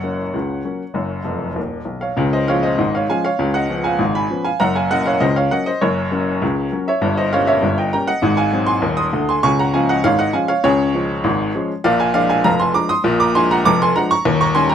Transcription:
Already playing: F#1 F#2 C#5 F#5
0.03 F#3 A#3 C#4
0.33 C#2 C#3
0.65 F#3 A#3 C#4
0.94 F#1 F#2
1.24 F1 F2
1.56 D#1 D#2
1.85 B1
2.01 C#5 F5
2.17 C#2 C#3
2.33 C5 D#5
2.48 F3 G#3 C#4 C#5 F5
2.63 C5 D#5
2.78 G#1 G#2
2.95 C#5 F5
3.09 F3 G#3 C#4 F5 G#5
3.25 C#5 F5
3.39 C#2 C#3
3.54 D#5 F#5
3.69 F3 B3 C#4
3.84 F5 G#5
3.99 G#1 G#2
4.15 G#5 B5
4.30 F3 B3 C#4
4.45 F5 G#5
4.60 F#1 F#2 F#5 A#5
4.76 F5 G#5
4.91 F#3 A#3 C#4 D#5 F#5
5.06 C#5 F5
5.20 C#2 C#3 C5 D#5
5.36 C#5 F5
5.51 F#3 A#3 C#4 D#5 F#5
5.66 C5 D#5
5.81 F#1 F#2 A#4 C#5
6.12 F#3 A#3 C#4
6.42 C#2 C#3
6.72 F#3 A#3 C#4
6.88 C#5 E5
7.02 G1 G2
7.17 C5 D#5
7.33 G3 A#3 C#4 C#5 F5
7.47 C#5 E5
7.62 G1 G2
7.78 D#5 G5
7.93 G3 A#3 C#4 G5 A#5
8.08 D#5 F#5
8.22 G#1 G#2
8.37 F5 G#5
8.52 F#3 G#3 C4
8.67 G#5 C6
8.82 D#1 D#2
8.97 C6 D#6
9.13 D2 D3
9.29 G#5 C6
9.43 C#2 C#3 G#5 C#6
9.59 F#5 A#5
9.74 F3 G#3 C#4 F5 G#5
9.89 D#5 F#5
10.04 G#1 G#2 C#5 F5
10.19 D#5 F#5
10.33 F3 G#3 C#4 F5 G#5
10.48 C#5 F5
10.64 C#2 C#3 G#4 C#5
10.94 F3 G#3 C#4
11.24 G#1 G#2
11.55 F3 G#3 C#4
11.84 A#1 A#2 D5 F5
12.00 F5 G#5
12.14 F3 G#3 D4 D5 F5
12.30 F5 G#5
12.44 F1 F2 F5 A#5
12.60 G#5 C6
12.74 F3 G#3 D4 A#5 D6
12.89 C6 D#6
13.04 A#1 A#2
13.20 A#5 D6
13.35 F3 G#3 D4 G#5 C6
13.51 F#5 A#5
13.65 F1 F2 A#5 D6
13.82 G#5 C6
13.96 F3 G#3 D4 F#5 A#5
14.11 A#5 C#6
14.25 D#1 D#2
14.41 A#5 C#6
14.55 D#3 G3 C#4 G#5 C6
14.69 G5 A#5

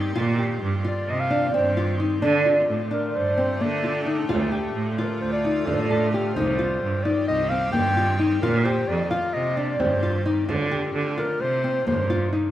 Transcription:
Already playing: D#3 C4 D#4 G4
0.15 A#2 D3 A#3 F4
0.38 G4
0.62 G2
0.84 F4 D5
1.08 C3 D#3 C4 G4 D#5
1.20 F5
1.30 D4
1.54 G2 C4 C5
1.77 F4
2.00 D#4
2.21 D3 A3 D4 F4
2.45 F4
2.69 A2
2.91 D4 A#4
3.14 G2 A#2 G4 C5
3.37 C4
3.60 D3 A#3 D5
3.84 F4
4.06 D#4
4.28 D2 D3 F4, frame drum
4.52 G4
4.75 A2
4.98 F4 A#4, frame drum
5.21 D2 C5, frame drum
5.33 D5
5.45 D#4
5.66 A2 D4 A4, frame drum
5.90 A4, frame drum
6.14 G4
6.35 C2 D#3 C4 D#4 G4 C5, frame drum
6.59 F4
6.83 G2
7.04 D#4 D5, frame drum
7.28 C2 D#5, frame drum
7.49 C4 F5
7.72 G2 A#3 G5, frame drum
7.96 F4, frame drum
8.19 D#4
8.42 A#2 D3 A#3 F4 A#4, frame drum
8.64 G4 C5
8.88 F2 D5
9.10 F4 F5, frame drum
9.33 C3 D#3 C4 G4 D#5, frame drum
9.57 D4 D5
9.79 G2 C4 C5, frame drum
10.02 F4, frame drum
10.25 D#4
10.48 D3 A3 F4, frame drum
10.71 G4
10.95 D3
11.18 F4 A#4, frame drum
11.39 C3 A#3 D#4 C5
11.64 C4, frame drum
11.87 G2 A#3 C5, frame drum
12.10 F4, frame drum
12.33 D#4

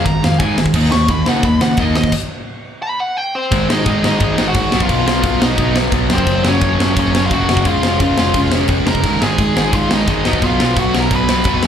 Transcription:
0.05 G#1 G#2 D#3 A#5, kick, ride
0.24 F2 G#2 D#3 F5, snare
0.39 G#1 G#2 D#3 G#3 G#5, kick, ride
0.58 G#1 G#2 D#3, snare
0.66 kick
0.74 D#2 D#3 A#3 D#4, kick, crash
0.91 D#2 D#3 A#3 C#6, snare
1.08 D#2 D#3 A#3 B5, kick, ride
1.26 C#3 D#3 A#3 D#4 F#5, snare
1.43 D#2 D#3 A#3 B5, kick, ride
1.60 C#3 D#3 A#3 F#5, snare
1.77 D#2 D#3 A#3 D#4 D#5, kick, ride
1.95 D#2 D#3 A#3 D#5, snare
2.04 kick
2.12 kick, crash
2.83 B5
3.00 F#5
3.17 G5
3.35 C4 C5
3.52 G#1 G#2 D#3 G#3, kick, crash
3.69 G#1 G#2 D#3 G#3 D#4 D#5, snare
3.86 G#1 G#2 D#3 G#3, kick, crash
4.04 G#1 G#2 D#3 G#3 D#4 D#5, snare
4.20 G#1 G#2 D#3 G#3, kick, crash
4.38 G#2 D#3 G#3, snare
4.48 F#4 F#5
4.55 G#1 G#2 D#3 G#3, kick, crash
4.72 B1 B2 F#3 B3, snare
4.80 F4 F5, kick
4.89 B1 B2 F#3 B3, kick, crash
5.07 B1 B2 F#3 B3 F4 F5, snare
5.23 B1 B2 F#3 B3, kick, crash
5.42 B1 B2 F#3 B3 D#4 D#5, snare
5.57 B1 B2 F#3 B3, kick, crash
5.75 B2 F#3 B3, snare
5.92 B1 B2 F#3 B3, kick, crash
6.10 F#1 F#2 C#3 F#3 C4, snare
6.15 C5, kick
6.27 F#1 F#2 C#3 F#3, kick, crash
6.44 F#1 F#2 C#3 F#3 C#4, snare
6.49 C#5
6.61 F#1 F#2 C#3 F#3, kick, crash
6.80 F#1 F#2 C#3 F#3, snare
6.97 F#1 F#2 C#3 F#3 C#4 C#5, kick, crash
7.14 F#2 C#3 F#3, snare
7.25 F4 F5
7.31 F#1 F#2 C#3 F#3 F#4 F#5, kick, crash
7.48 F#1 F#2 C#3 F#3, snare
7.57 kick
7.64 F1 C#3 G#3 C#4 F4 F5, kick, crash
7.83 F1 C#3 G#3 C#4, snare
8.00 F1 C#3 G#3 C#4 F4 F5, kick, crash
8.18 F1 C#3 G#3 C#4, snare
8.34 F1 C#3 G#3 C#4, kick, crash
8.52 C#3 G#3 C#4, snare
8.68 F1 C#3 G#3 C#4, kick, crash
8.86 F1 C#3 G#3 C#4 A#4 A#5, snare
8.95 kick
9.04 G#1 G#2 D#3 G#3, kick, crash
9.22 G#1 G#2 D#3 G#3 G#4 G#5, snare
9.38 G#1 G#2 D#3 G#3, kick, crash
9.56 G#1 G#2 D#3 G#3, snare
9.73 G#1 G#2 D#3 G#3 F4 F5, kick, crash
9.91 G#2 D#3 G#3 D#4 D#5, snare
10.08 G#1 G#2 D#3 G#3 D#4 D#5, kick, crash
10.25 B1 B2 F#3 B3, snare
10.33 kick
10.42 B1 B2 F#3 B3 F4, kick, crash
10.46 F5
10.60 B1 B2 F#3 B3, snare
10.76 B1 B2 F#3 B3 F#4, kick, crash
10.80 F#5
10.94 B1 B2 F#3 B3, snare
10.98 A#4 A#5
11.11 B1 B2 F#3 B3 B4, kick, crash
11.16 B5
11.29 B2 F#3 B3, snare
11.44 F1 B2 F#3 B3, kick, crash
11.63 F#2 C#3 F#3, snare

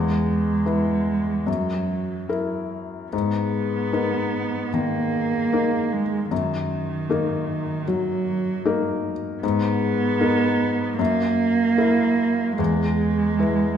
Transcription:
Already playing: E2 G#3
0.66 E4 B4
1.47 F#2 F#3
2.29 E4 A#4
3.12 G#2 B3
3.93 B3 D#4 A#4
4.74 D#3 A#3
5.53 A#3 D#4 A#4
5.92 G#3
6.31 F#2 D#3
7.09 A#3 D#4 A#4
7.88 F#3
8.65 A#3 D#4 A#4
9.43 G#2 B3
10.21 D#4 A#4
10.98 F#2 A#3
11.78 E4 A#4
12.58 E2 G#3
13.39 E4 B4

